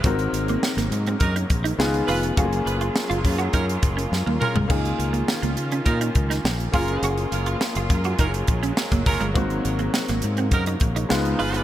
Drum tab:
CC |----------------|----------------|x---------------|----------------|
HH |xxxx-xxxxxxx-xox|xxxx-xoxxxxx----|-xxx-xxxxxxx-xox|xxxx-xxxxxxx-xox|
SD |----oo------o---|----o-------o---|----o------oo---|----o-------o---|
T1 |----------------|-------------o--|----------------|----------------|
T2 |----------------|--------------o-|----------------|----------------|
FT |----------------|---------------o|----------------|----------------|
BD |o-------o-o-----|o-----o-o-o-----|o-------o-o---o-|------o-o-o--oo-|

CC |----------------|
HH |xxxx-xxxxxxx-xox|
SD |----oo------o---|
T1 |----------------|
T2 |----------------|
FT |----------------|
BD |o-------o-o-----|